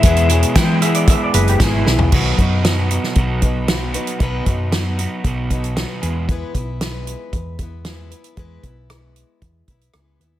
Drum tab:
CC |----------------|x---------------|----------------|----------------|
HH |xxxxx-xxx-xxx---|--x-x-x-x-x-x-xx|x-x-x-x-x-xxx-x-|x-x-x-x-x-x-x-xx|
SD |----o-------o-o-|----o--o----o---|----o-------o---|----o-------o---|
FT |---------------o|----------------|----------------|----------------|
BD |o---o---o---o---|o-o-----o-o-----|o-o-----o-o-----|o-o-----o-o-----|

CC |----------------|
HH |x-x-x-x-x-xxx-x-|
SD |----r-------r---|
FT |----------------|
BD |o-o-----o-o-----|